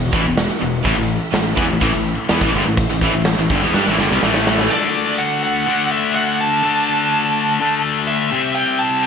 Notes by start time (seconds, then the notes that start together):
Already playing: E1 E3 B3 F#4
0.13 A1 A2 E3, kick
0.26 E1 E2 B2
0.37 snare, crash
0.61 E1 E2 B2
0.84 A1 A2 E3 A3 E4 B4, kick, crash
0.98 A1 A2 E3
1.33 A1 A2 E3, snare, crash
1.57 E2 E3 B3, kick
1.70 A1 A2 E3
1.81 A1 A2 E3, kick, crash
1.93 A1 A2 E3
2.29 E2 E3 B3, snare, crash
2.41 A1 A2 E3, kick
2.54 G1 G2 D3
2.65 A1 A2 E3
2.77 C5, kick, crash
2.90 A1 A2 E3
3.01 A1 A2 E3, kick
3.13 A1 A2 E3
3.25 snare, crash
3.39 A1 A2 E3
3.50 G1 G2 D3, kick
3.62 E2 E3 B3, snare
3.74 G2 G3 D4, snare
3.86 A1 A2 E3, snare
3.99 G1 G2 D3, snare
4.10 C2 C3 G3, snare
4.23 A1 A2 E3 A3, snare
4.34 snare
4.47 snare
4.58 snare
4.71 D3 A3 D4 D5
5.18 F#5
5.43 F#5
5.67 D3 A3 D4
5.91 E5
6.15 F#5
6.41 A5
6.63 D3 A3 D4
7.60 D3 A3 D4
8.07 E5
8.31 C3 G3 C4
8.55 G5
8.79 A5
9.03 G5